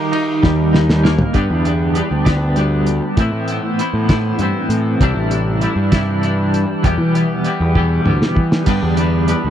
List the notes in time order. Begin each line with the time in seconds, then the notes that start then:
Already playing: D#3 G3 G4 A#4 D#5 A#5
0.12 D#4, ride
0.43 D#2 G3, kick, snare
0.73 D#4, snare
0.90 snare
1.04 A#3, snare
1.19 floor tom
1.33 G2 D3 G3 B3 D4 G4, kick, closed hi-hat
1.50 E2
1.65 G3 B3 D4 G4, closed hi-hat
1.94 G3 B3 D4 G4, closed hi-hat
2.11 D2
2.25 G2 D3 G3 B3 D4 G4, kick, snare, closed hi-hat
2.56 G3 B3 D4 G4, closed hi-hat
2.86 closed hi-hat
3.17 A2 E3 B3 C4 E4, kick, closed hi-hat
3.33 A2
3.48 B3 E4, closed hi-hat
3.52 C4
3.78 E3 B3 C4 E4, closed hi-hat
3.94 A2
4.08 A2 E3 B3 C4 E4, kick, snare, closed hi-hat
4.39 G2 E3 B3 C4, closed hi-hat
4.43 E4
4.69 A2, closed hi-hat
5.00 C2 C3 E3 G3 D4 E4, kick, closed hi-hat
5.16 A1
5.31 G3 D4 E4, closed hi-hat
5.61 E3 G3 D4 E4, closed hi-hat
5.76 G2
5.92 C3 E3 G3 D4 E4, kick, snare, closed hi-hat
6.21 E3 G3 D4 E4, closed hi-hat
6.54 closed hi-hat
6.83 E2 B2 E3 G3 B3 G4, kick, closed hi-hat
6.98 E3
7.13 E3 G3 B3 G4, closed hi-hat
7.44 E3 G3 B3 G4, closed hi-hat
7.60 E2
7.75 E2 B2 E3 G3 B3 G4, kick
8.05 D2 E3 G3 B3 G4, mid tom
8.22 snare
8.36 E3, kick
8.52 snare
8.65 G2 D3 G3 B3 G4 B4 D5 B5, kick, closed hi-hat, crash
8.69 D4
8.83 E2
8.97 G3 B3 D4 G4, closed hi-hat
9.27 G3 B3 D4 G4, closed hi-hat
9.44 D2